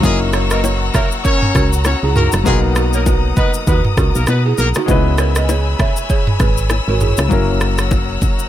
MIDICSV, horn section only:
0, 0, Header, 1, 2, 480
1, 0, Start_track
1, 0, Tempo, 606061
1, 29, Time_signature, 4, 2, 24, 8
1, 6722, End_track
2, 0, Start_track
2, 0, Title_t, "Horn section"
2, 0, Program_c, 0, 61
2, 24, Note_on_c, 0, 56, 100
2, 26, Note_on_c, 0, 68, 114
2, 137, Note_off_c, 0, 56, 0
2, 138, Note_off_c, 0, 68, 0
2, 404, Note_on_c, 0, 58, 82
2, 404, Note_on_c, 0, 70, 91
2, 486, Note_off_c, 0, 58, 0
2, 486, Note_off_c, 0, 70, 0
2, 744, Note_on_c, 0, 70, 96
2, 745, Note_on_c, 0, 58, 87
2, 857, Note_off_c, 0, 70, 0
2, 858, Note_off_c, 0, 58, 0
2, 985, Note_on_c, 0, 61, 108
2, 985, Note_on_c, 0, 73, 120
2, 1343, Note_off_c, 0, 61, 0
2, 1343, Note_off_c, 0, 73, 0
2, 1467, Note_on_c, 0, 73, 92
2, 1468, Note_on_c, 0, 61, 81
2, 1579, Note_off_c, 0, 61, 0
2, 1579, Note_off_c, 0, 73, 0
2, 1705, Note_on_c, 0, 70, 104
2, 1706, Note_on_c, 0, 58, 90
2, 1818, Note_off_c, 0, 58, 0
2, 1818, Note_off_c, 0, 70, 0
2, 1947, Note_on_c, 0, 56, 110
2, 1947, Note_on_c, 0, 68, 123
2, 2059, Note_off_c, 0, 56, 0
2, 2059, Note_off_c, 0, 68, 0
2, 2327, Note_on_c, 0, 58, 80
2, 2328, Note_on_c, 0, 70, 86
2, 2408, Note_off_c, 0, 58, 0
2, 2408, Note_off_c, 0, 70, 0
2, 2668, Note_on_c, 0, 71, 105
2, 2669, Note_on_c, 0, 59, 94
2, 2780, Note_off_c, 0, 59, 0
2, 2780, Note_off_c, 0, 71, 0
2, 2908, Note_on_c, 0, 59, 81
2, 2909, Note_on_c, 0, 71, 89
2, 3019, Note_off_c, 0, 59, 0
2, 3020, Note_off_c, 0, 71, 0
2, 3285, Note_on_c, 0, 70, 98
2, 3286, Note_on_c, 0, 58, 91
2, 3367, Note_off_c, 0, 58, 0
2, 3367, Note_off_c, 0, 70, 0
2, 3388, Note_on_c, 0, 59, 78
2, 3388, Note_on_c, 0, 71, 83
2, 3499, Note_off_c, 0, 71, 0
2, 3500, Note_off_c, 0, 59, 0
2, 3628, Note_on_c, 0, 58, 95
2, 3628, Note_on_c, 0, 70, 104
2, 3711, Note_off_c, 0, 58, 0
2, 3712, Note_off_c, 0, 70, 0
2, 6722, End_track
0, 0, End_of_file